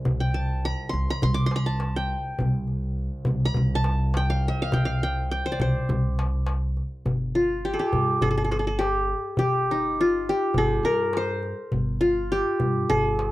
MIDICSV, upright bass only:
0, 0, Header, 1, 2, 480
1, 0, Start_track
1, 0, Tempo, 583658
1, 45, Time_signature, 4, 2, 24, 8
1, 10952, End_track
2, 0, Start_track
2, 0, Title_t, "Upright bass"
2, 0, Program_c, 0, 32
2, 46, Note_on_c, 0, 36, 88
2, 600, Note_off_c, 0, 36, 0
2, 766, Note_on_c, 0, 36, 88
2, 858, Note_off_c, 0, 36, 0
2, 1009, Note_on_c, 0, 36, 92
2, 1747, Note_off_c, 0, 36, 0
2, 1975, Note_on_c, 0, 36, 91
2, 2525, Note_off_c, 0, 36, 0
2, 2687, Note_on_c, 0, 36, 95
2, 2871, Note_off_c, 0, 36, 0
2, 2932, Note_on_c, 0, 36, 107
2, 3668, Note_off_c, 0, 36, 0
2, 3888, Note_on_c, 0, 36, 93
2, 4441, Note_off_c, 0, 36, 0
2, 4603, Note_on_c, 0, 36, 88
2, 4695, Note_off_c, 0, 36, 0
2, 4844, Note_on_c, 0, 36, 104
2, 5583, Note_off_c, 0, 36, 0
2, 5801, Note_on_c, 0, 31, 82
2, 6356, Note_off_c, 0, 31, 0
2, 6523, Note_on_c, 0, 43, 83
2, 6708, Note_off_c, 0, 43, 0
2, 6757, Note_on_c, 0, 31, 96
2, 7499, Note_off_c, 0, 31, 0
2, 7719, Note_on_c, 0, 31, 77
2, 8461, Note_off_c, 0, 31, 0
2, 8671, Note_on_c, 0, 31, 85
2, 8860, Note_off_c, 0, 31, 0
2, 8908, Note_on_c, 0, 43, 81
2, 9469, Note_off_c, 0, 43, 0
2, 9640, Note_on_c, 0, 31, 88
2, 10197, Note_off_c, 0, 31, 0
2, 10365, Note_on_c, 0, 43, 86
2, 10550, Note_off_c, 0, 43, 0
2, 10611, Note_on_c, 0, 31, 98
2, 10952, Note_off_c, 0, 31, 0
2, 10952, End_track
0, 0, End_of_file